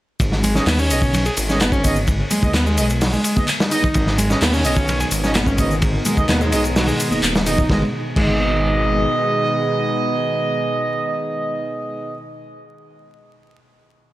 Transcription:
0.20 G#1, kick, ride, shaker
0.32 snare
0.43 G#3, open hi-hat, ride, low conga, shaker
0.55 B3 C#4 D#4 G#4 D#5, snare, shaker
0.66 D#2 B3, snare, clap, open hi-hat, shaker
0.79 C#4, shaker
0.90 B1 B3 D#4 G#4 D#5, open hi-hat, ride, shaker
1.02 kick, shaker
1.14 ride, low conga, shaker
1.26 G#4, ride, shaker
1.37 G#1, open hi-hat, ride, shaker
1.49 B3 C#4 D#4 G#4 D#5, snare, shaker
1.61 B3, snare, clap, ride, high conga, shaker
1.72 C#4, kick, shaker
1.84 B3 C#4 D#4 G#4 D#5, kick, open hi-hat, ride, high conga, shaker
1.96 shaker
2.07 kick, ride, shaker
2.30 G#3, open hi-hat, ride, high conga, low conga, shaker
2.43 D#2 B3 D#4 G#4 D#5, kick, shaker
2.54 D#2 B3, snare, clap, ride, shaker
2.66 G#3, shaker
2.77 B1 G#3 B3 D#4 G#4 D#5, open hi-hat, ride, shaker
2.90 ride, shaker
3.01 F#3, snare, open hi-hat, shaker
3.13 G#3, shaker
3.24 G#3, open hi-hat, ride, shaker
3.36 B3 D#4 G#4 D#5, kick, high conga, shaker
3.48 clap, ride, shaker
3.60 snare, shaker
3.71 B3 D#4 G#4 D#5, open hi-hat, ride, shaker
3.82 kick, low conga, shaker
3.94 G#1 G#2 B2 D#3 B3 D#4, kick, ride, shaker
4.07 snare
4.18 G#3, open hi-hat, ride, low conga, shaker
4.30 B3 C#4 D#4 G#4 D#5, snare, shaker
4.41 D#2 B3, snare, clap, open hi-hat, shaker
4.53 C#4, shaker
4.65 B1 B3 D#4 G#4 D#5, open hi-hat, ride, shaker
4.76 kick, shaker
4.88 ride, low conga, shaker
5.00 G#4, ride, shaker
5.11 G#1, open hi-hat, ride, shaker
5.23 B3 C#4 D#4 G#4 D#5, snare, shaker
5.35 B3, snare, clap, ride, high conga, shaker
5.47 C#4, kick, shaker
5.58 B3 C#4 D#4 G#4 D#5, kick, open hi-hat, ride, high conga, shaker
5.71 shaker
5.82 kick, ride, shaker
6.05 G#3, open hi-hat, ride, high conga, low conga, shaker
6.17 D#2 B3 D#4 G#4 D#5, kick, shaker
6.29 D#2 B3, snare, clap, ride, shaker
6.41 G#3, shaker
6.52 B1 G#3 B3 D#4 G#4 D#5, open hi-hat, ride, shaker
6.64 ride, shaker
6.76 F#3, snare, open hi-hat, shaker
6.88 G#3, shaker
7.00 G#3, open hi-hat, ride, shaker
7.11 D#1 B3 D#4 G#4 D#5, high conga, shaker
7.23 D#1, clap, ride, shaker
7.35 snare, shaker
7.46 B3 D#4 G#4 D#5, open hi-hat, ride, shaker
7.57 kick, low conga, shaker
7.70 G#1 B2 D#3 G#3 B3 D#4 G#4 D#5, kick, snare
8.16 G#1 G#3 B3 D#4 G#4 D#5, kick, crash

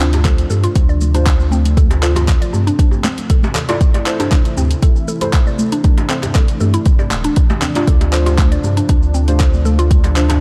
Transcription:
Already playing: D2 C3 F3 A3 D4
0.00 D4 F4 C5, clap, shaker
0.13 closed hi-hat, djembe slap, djembe tone, shaker
0.24 A4, kick, clap, closed hi-hat, muted conga, high conga, low conga, shaker
0.38 closed hi-hat, shaker
0.50 G2 A4, muted conga, djembe tone, shaker
0.64 F4, closed hi-hat, shaker
0.75 D2, kick, closed hi-hat, muted conga, shaker
0.89 D5, shaker
1.01 muted conga, shaker
1.14 D4 F4 C5, closed hi-hat, high conga, djembe tone, shaker
1.26 D4, kick, clap, closed hi-hat, shaker
1.40 muted conga, shaker
1.51 C4, high conga, shaker
1.65 closed hi-hat, muted conga, shaker
1.77 C4 A4, kick, closed hi-hat, high conga, shaker
1.91 closed hi-hat, djembe slap, muted conga, shaker
2.02 D4 F4 A4 C5, clap, shaker
2.16 F4, closed hi-hat, djembe slap, djembe tone, low conga, shaker
2.28 kick, clap, closed hi-hat, muted conga, high conga, low conga, shaker
2.42 D5, closed hi-hat, shaker
2.53 G2, muted conga, djembe tone, high conga, shaker
2.67 D4, closed hi-hat, shaker
2.79 D4, kick, closed hi-hat, muted conga, shaker
2.91 djembe tone, shaker
3.04 C4, clap, muted conga, high conga, shaker
3.18 closed hi-hat, high conga, shaker
3.30 A4, kick, closed hi-hat, shaker
3.43 muted conga, djembe slap, high conga, shaker
3.55 A4, clap, low conga, shaker
3.69 E4 F4 A4 D5, closed hi-hat, muted conga, djembe slap, shaker
3.81 E3 A3 E4, kick, closed hi-hat, shaker
3.94 D5, closed hi-hat, muted conga, djembe slap, shaker
4.06 E4 A4 C5, clap, shaker
4.20 D4, closed hi-hat, djembe slap, djembe tone, shaker
4.31 D4, kick, clap, closed hi-hat, muted conga, high conga, low conga, shaker
4.45 closed hi-hat, shaker
4.57 D2 C4, muted conga, djembe tone, shaker
4.71 closed hi-hat, shaker
4.83 A4, kick, closed hi-hat, muted conga, shaker
4.96 shaker
5.08 A4, muted conga, shaker
5.21 E4 A4 C5, closed hi-hat, high conga, djembe tone, shaker
5.33 kick, clap, closed hi-hat, shaker
5.47 D5, muted conga, shaker
5.59 high conga, shaker
5.72 D4, closed hi-hat, muted conga, shaker
5.84 D4, kick, closed hi-hat, high conga, shaker
5.98 closed hi-hat, djembe slap, muted conga, shaker
6.09 C4 E4 A4 C5, clap, shaker
6.22 closed hi-hat, djembe slap, djembe tone, low conga, shaker
6.35 A4, kick, clap, closed hi-hat, muted conga, high conga, low conga, shaker
6.48 closed hi-hat, shaker
6.60 G2 A4, muted conga, djembe tone, high conga, shaker
6.74 E4, closed hi-hat, shaker
6.86 kick, closed hi-hat, shaker
6.99 D5, djembe tone, shaker
7.11 D1, clap, muted conga, high conga, shaker
7.24 D4, closed hi-hat, high conga, shaker
7.36 D4, kick, closed hi-hat, shaker
7.50 djembe slap, muted conga, high conga, shaker
7.62 C4, clap, low conga, shaker
7.75 D4 F4 D5, closed hi-hat, muted conga, djembe slap, shaker
7.87 D2 F3 A3 A4, kick, closed hi-hat, shaker
8.01 closed hi-hat, djembe slap, muted conga, shaker
8.13 D4 F4 A4 C5, clap, shaker
8.26 F4, closed hi-hat, djembe slap, djembe tone, shaker
8.38 kick, clap, closed hi-hat, muted conga, high conga, low conga, shaker
8.52 D5, closed hi-hat, shaker
8.64 G2, muted conga, djembe tone, shaker
8.77 D4, closed hi-hat, shaker
8.89 D2 D4, kick, closed hi-hat, muted conga, shaker
9.03 shaker
9.14 C4, muted conga, shaker
9.28 D4 F4 C5, closed hi-hat, djembe tone, high conga, shaker
9.40 A4, kick, clap, closed hi-hat, shaker
9.54 muted conga, shaker
9.65 A4, high conga, shaker
9.79 F4, closed hi-hat, muted conga, shaker
9.91 kick, closed hi-hat, high conga, shaker
10.04 D5, closed hi-hat, djembe slap, muted conga, shaker
10.16 D4 F4 C5, clap, shaker
10.29 D4, closed hi-hat, djembe slap, djembe tone, low conga, shaker

